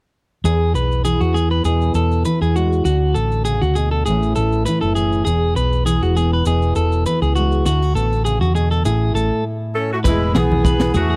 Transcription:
0.44 2.85 E2 medium
0.44 0.72 E2 medium
0.44 1.04 G#4 medium
0.44 0.74 G#4 medium
0.44 maracas medium
0.74 1.17 B1 medium
0.74 1.04 B4 medium
0.74 maracas medium
0.92 maracas soft
1.04 2.25 E3 medium
1.04 1.20 G#4 medium
1.04 1.65 G#4 soft
1.04 maracas medium
1.21 1.62 E2 medium
1.21 1.34 F#4 medium
1.21 maracas soft
1.34 2.25 B3 soft
1.34 1.50 G#4 medium
1.34 maracas medium
1.51 1.64 B4 medium
1.65 1.93 E2 medium
1.65 2.26 B2 medium
1.65 2.83 F#4 medium
1.65 1.94 G#4 medium
1.65 maracas medium
1.81 maracas soft
1.94 2.23 E2 medium
1.94 2.24 A4 medium
1.94 maracas medium
2.12 maracas soft
2.25 2.83 E3 medium
2.25 2.41 B4 medium
2.25 muted steel-string acoustic guitar stroke medium
2.25 maracas medium
2.41 2.82 E2 medium
2.41 2.55 G#4 medium
2.41 maracas soft
2.56 2.83 G#3 soft
2.56 2.84 F#4 medium
2.56 maracas medium
2.73 maracas soft
2.85 3.13 D2 medium
2.85 4.07 D3 medium
2.85 3.14 F#4 medium
2.85 4.04 F#4 medium
2.85 maracas medium
3.14 3.59 A1 medium
3.14 3.44 A4 medium
3.14 maracas medium
3.32 maracas soft
3.45 3.76 C#3 medium
3.45 3.61 G#4 medium
3.45 maracas medium
3.62 4.03 D2 medium
3.62 3.75 F#4 medium
3.62 maracas soft
3.75 4.06 B2 medium
3.75 3.91 G#4 medium
3.75 maracas medium
3.91 4.05 A4 medium
4.06 4.34 A1 medium
4.06 5.27 A2 medium
4.06 4.66 E3 medium
4.06 4.37 A3 medium
4.06 4.34 G#4 medium
4.06 maracas medium
4.10 4.96 C#4 soft
4.10 4.67 E4 medium
4.23 maracas soft
4.36 4.65 A1 medium
4.36 5.24 A3 soft
4.36 4.64 A4 medium
4.36 maracas medium
4.52 maracas soft
4.66 5.24 E3 medium
4.66 5.26 E4 medium
4.66 4.81 B4 medium
4.66 maracas medium
4.81 5.23 F#1 medium
4.81 4.95 A4 medium
4.81 maracas soft
4.95 5.24 C#4 medium
4.95 5.24 G#4 medium
4.95 maracas medium
5.12 maracas soft
5.25 5.54 E1 medium
5.25 7.66 E2 medium
5.25 5.54 G#4 medium
5.25 5.85 G#4 medium
5.25 maracas medium
5.56 5.99 B1 medium
5.56 5.85 B4 medium
5.56 maracas medium
5.73 maracas soft
5.85 7.05 E3 medium
5.85 6.01 G#4 medium
5.85 6.46 G#4 medium
5.85 maracas medium
6.03 6.43 E1 medium
6.03 6.16 F#4 medium
6.03 maracas soft
6.17 7.06 B3 medium
6.17 6.32 G#4 medium
6.17 maracas medium
6.33 6.46 B4 medium
6.45 6.74 E1 medium
6.45 7.06 B2 medium
6.45 7.63 F#4 medium
6.45 6.75 G#4 medium
6.45 maracas medium
6.62 maracas soft
6.75 7.04 E1 medium
6.75 7.04 A4 medium
6.75 maracas medium
6.92 maracas soft
7.06 7.63 E3 medium
7.06 7.67 B3 medium
7.06 7.21 B4 medium
7.06 maracas medium
7.22 7.63 C#2 medium
7.22 7.35 G#4 medium
7.22 maracas soft
7.35 7.64 G#3 medium
7.35 7.64 F#4 medium
7.35 maracas medium
7.52 maracas soft
7.65 7.93 D2 medium
7.65 8.87 D3 medium
7.65 7.82 E4 medium
7.65 7.94 F#4 medium
7.65 maracas medium
7.82 8.85 F#4 soft
7.82 maracas soft
7.94 8.38 A1 medium
7.94 8.12 B3 medium
7.94 8.24 A4 medium
7.94 maracas medium
8.13 maracas soft
8.25 8.55 C#3 medium
8.25 8.41 G#4 medium
8.25 maracas medium
8.41 8.82 E2 medium
8.41 8.55 F#4 medium
8.41 maracas soft
8.55 8.84 B2 medium
8.55 8.71 G#4 medium
8.55 maracas medium
8.71 8.85 A4 medium
8.71 maracas soft
8.85 9.13 A1 medium
8.85 11.16 A2 medium
8.85 11.16 E4 medium
8.85 9.14 G#4 medium
8.85 maracas medium
9.14 9.30 A1 medium
9.14 9.41 A3 soft
9.14 9.44 A4 medium
9.14 maracas medium
9.75 9.90 C#4 medium
9.75 9.90 A4 medium
9.93 9.99 A3 medium
9.93 9.98 F#4 medium
10.04 10.33 E1 medium
10.04 11.16 E2 medium
10.04 10.34 E4 medium
10.04 10.33 B4 medium
10.04 kick medium
10.04 snare soft
10.04 crash medium
10.04 maracas loud
10.08 10.34 G#3 medium
10.34 10.91 B1 medium
10.34 10.94 E3 medium
10.34 10.96 B3 medium
10.34 10.63 G#4 medium
10.34 10.95 G#4 medium
10.34 snare medium
10.52 high conga medium
10.65 10.93 B4 medium
10.65 kick medium
10.65 high conga medium
10.65 maracas loud
10.80 snare medium
10.94 11.16 E2 medium
10.94 11.16 E3 medium
10.94 11.16 A3 medium
10.94 11.16 F#4 medium
10.94 11.09 G#4 medium
10.94 low conga medium
10.94 maracas medium
11.10 11.16 G#4 medium

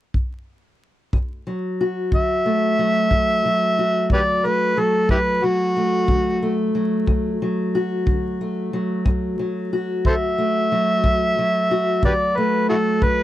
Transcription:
0.14 kick medium
1.13 1.73 D2 medium
1.13 kick medium
1.47 2.78 F#3 medium
1.81 3.78 F#4 medium
2.12 2.72 D3 medium
2.12 4.08 E5 loud
2.12 kick medium
2.46 4.44 A3 medium
2.79 3.45 F#3 medium
3.11 3.71 D2 medium
3.11 kick medium
3.45 4.77 F#3 medium
3.79 7.29 F#4 medium
4.10 4.70 D3 medium
4.10 4.22 G4 medium
4.10 4.21 B4 medium
4.10 4.47 D5 medium
4.10 kick medium
4.45 5.76 A3 medium
4.45 4.81 B4 medium
4.77 5.43 F#3 medium
4.77 5.10 A4 medium
5.09 5.69 D2 medium
5.09 5.17 E4 medium
5.09 5.19 G4 medium
5.09 5.46 B4 medium
5.09 kick medium
5.44 6.74 F#3 medium
5.44 6.72 F#4 medium
5.77 6.42 A3 medium
6.08 6.68 D3 medium
6.08 kick medium
6.43 8.41 A3 medium
6.75 7.42 F#3 medium
7.07 7.67 D2 medium
7.07 kick medium
7.42 8.73 F#3 medium
7.75 9.72 F#4 medium
8.06 8.66 D3 medium
8.06 kick medium
8.41 10.38 A3 medium
8.73 9.39 F#3 medium
9.05 9.65 D2 medium
9.05 kick medium
9.39 10.71 F#3 medium
9.73 11.70 F#4 medium
10.05 10.65 D3 medium
10.05 10.15 A4 medium
10.05 10.13 C5 medium
10.05 12.01 E5 loud
10.05 kick medium
10.38 12.36 A3 medium
10.72 11.37 F#3 medium
11.04 11.64 D2 medium
11.04 kick medium
11.39 12.70 F#3 medium
11.71 12.99 F#4 medium
12.03 12.63 D3 medium
12.03 12.13 G4 medium
12.03 12.12 B4 medium
12.03 12.38 D5 medium
12.03 kick medium
12.37 13.23 A3 medium
12.37 12.69 B4 medium
12.69 13.23 F#3 medium
12.69 12.75 E4 medium
12.69 12.75 F#4 medium
12.69 13.05 A4 medium
13.02 13.23 D2 medium
13.02 13.23 B4 loud
13.02 kick medium

